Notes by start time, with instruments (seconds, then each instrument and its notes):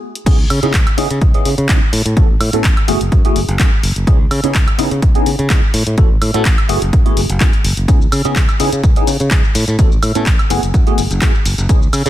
0.15 closed hi-hat
0.26 fingered electric bass C#2, tine electric piano B3 C#4 D#4 E4 G#4, kick, closed hi-hat, crash
0.50 fingered electric bass C#3, open hi-hat, high woodblock
0.62 fingered electric bass C#3, tine electric piano B3 C#4 D#4 E4 G#4, closed hi-hat
0.74 fingered electric bass C#2, kick, clap, closed hi-hat
0.87 closed hi-hat, high woodblock
0.97 fingered electric bass C#3, tine electric piano B3 C#4 D#4 E4 G#4, open hi-hat
1.10 fingered electric bass C#3, closed hi-hat
1.21 fingered electric bass C#2, kick, closed hi-hat
1.34 tine electric piano B3 C#4 D#4 E4 G#4, closed hi-hat
1.45 fingered electric bass C#3, open hi-hat
1.58 fingered electric bass C#3, closed hi-hat
1.69 fingered electric bass C#2, tine electric piano B3 C#4 D#4 E4 G#4, kick, clap, closed hi-hat
1.93 fingered electric bass A2, open hi-hat
2.05 fingered electric bass A2, closed hi-hat
2.16 fingered electric bass A1, tine electric piano B3 C#4 E4 F#4 A4, kick, closed hi-hat
2.40 fingered electric bass A2, open hi-hat, high woodblock
2.53 fingered electric bass A2, tine electric piano B3 C#4 E4 F#4 A4, closed hi-hat
2.64 fingered electric bass A1, kick, clap, closed hi-hat
2.77 closed hi-hat, high woodblock
2.88 fingered electric bass F#1, tine electric piano A3 B3 E4 F#4 G#4, open hi-hat
3.01 fingered electric bass F#1, closed hi-hat
3.12 fingered electric bass F#2, kick, closed hi-hat
3.24 tine electric piano A3 B3 E4 F#4 G#4, closed hi-hat
3.36 fingered electric bass F#1, open hi-hat
3.48 fingered electric bass F#1, closed hi-hat
3.59 fingered electric bass F#2, tine electric piano A3 B3 E4 F#4 G#4, kick, clap, closed hi-hat
3.83 fingered electric bass F#1, open hi-hat
3.96 fingered electric bass F#1, closed hi-hat
4.07 fingered electric bass C#2, tine electric piano B3 C#4 D#4 E4 G#4, kick, closed hi-hat
4.31 fingered electric bass C#3, open hi-hat, high woodblock
4.43 fingered electric bass C#3, tine electric piano B3 C#4 D#4 E4 G#4, closed hi-hat
4.55 fingered electric bass C#2, kick, clap, closed hi-hat
4.68 closed hi-hat, high woodblock
4.78 fingered electric bass C#3, tine electric piano B3 C#4 D#4 E4 G#4, open hi-hat
4.91 fingered electric bass C#3, closed hi-hat
5.02 fingered electric bass C#2, kick, closed hi-hat
5.15 tine electric piano B3 C#4 D#4 E4 G#4, closed hi-hat
5.26 fingered electric bass C#3, open hi-hat
5.39 fingered electric bass C#3, closed hi-hat
5.49 fingered electric bass C#2, tine electric piano B3 C#4 D#4 E4 G#4, kick, clap, closed hi-hat
5.74 fingered electric bass A2, open hi-hat
5.87 fingered electric bass A2, closed hi-hat
5.97 fingered electric bass A1, tine electric piano B3 C#4 E4 F#4 A4, kick, closed hi-hat
6.22 fingered electric bass A2, open hi-hat, high woodblock
6.34 fingered electric bass A2, tine electric piano B3 C#4 E4 F#4 A4, closed hi-hat
6.45 fingered electric bass A1, kick, clap, closed hi-hat
6.58 closed hi-hat, high woodblock
6.69 fingered electric bass F#1, tine electric piano A3 B3 E4 F#4 G#4, open hi-hat
6.82 fingered electric bass F#1, closed hi-hat
6.93 fingered electric bass F#2, kick, closed hi-hat
7.05 tine electric piano A3 B3 E4 F#4 G#4, closed hi-hat
7.17 fingered electric bass F#1, open hi-hat
7.29 fingered electric bass F#1, closed hi-hat
7.40 fingered electric bass F#2, tine electric piano A3 B3 E4 F#4 G#4, kick, clap, closed hi-hat
7.53 closed hi-hat
7.64 fingered electric bass F#1, open hi-hat
7.77 fingered electric bass F#1, closed hi-hat
7.88 tine electric piano B3 C#4 D#4 E4 G#4, kick, closed hi-hat, shaker
8.02 shaker
8.12 fingered electric bass C#3, open hi-hat, high woodblock, shaker
8.24 fingered electric bass C#3, tine electric piano B3 C#4 D#4 E4 G#4, closed hi-hat, shaker
8.36 fingered electric bass C#2, kick, clap, closed hi-hat, shaker
8.49 closed hi-hat, high woodblock, shaker
8.59 fingered electric bass C#3, tine electric piano B3 C#4 D#4 E4 G#4, open hi-hat, shaker
8.72 fingered electric bass C#3, closed hi-hat, shaker
8.84 fingered electric bass C#2, kick, closed hi-hat, shaker
8.96 tine electric piano B3 C#4 D#4 E4 G#4, closed hi-hat, shaker
9.07 fingered electric bass C#3, open hi-hat, shaker
9.20 fingered electric bass C#3, closed hi-hat, shaker
9.31 fingered electric bass C#2, tine electric piano B3 C#4 D#4 E4 G#4, kick, clap, closed hi-hat, shaker
9.44 shaker
9.55 fingered electric bass A2, open hi-hat, shaker
9.68 fingered electric bass A2, closed hi-hat, shaker
9.78 fingered electric bass A1, tine electric piano B3 C#4 E4 F#4 A4, kick, closed hi-hat, shaker
9.92 shaker
10.03 fingered electric bass A2, open hi-hat, high woodblock, shaker
10.15 fingered electric bass A2, tine electric piano B3 C#4 E4 F#4 A4, closed hi-hat, shaker
10.26 fingered electric bass A1, kick, clap, closed hi-hat, shaker
10.39 closed hi-hat, high woodblock, shaker
10.50 fingered electric bass F#1, tine electric piano A3 B3 E4 F#4 G#4, open hi-hat, shaker
10.63 fingered electric bass F#1, closed hi-hat, shaker
10.74 fingered electric bass F#2, kick, closed hi-hat, shaker
10.86 tine electric piano A3 B3 E4 F#4 G#4, closed hi-hat, shaker
10.98 fingered electric bass F#1, open hi-hat, shaker
11.11 fingered electric bass F#1, closed hi-hat, shaker
11.21 fingered electric bass F#2, tine electric piano A3 B3 E4 F#4 G#4, kick, clap, closed hi-hat, shaker
11.35 shaker
11.45 fingered electric bass F#1, open hi-hat, shaker
11.58 fingered electric bass F#1, closed hi-hat, shaker
11.69 fingered electric bass C#2, tine electric piano B3 C#4 D#4 E4 G#4, kick, closed hi-hat, shaker
11.82 shaker
11.93 fingered electric bass C#3, open hi-hat, high woodblock, shaker
12.05 fingered electric bass C#3, tine electric piano B3 C#4 D#4 E4 G#4, closed hi-hat, shaker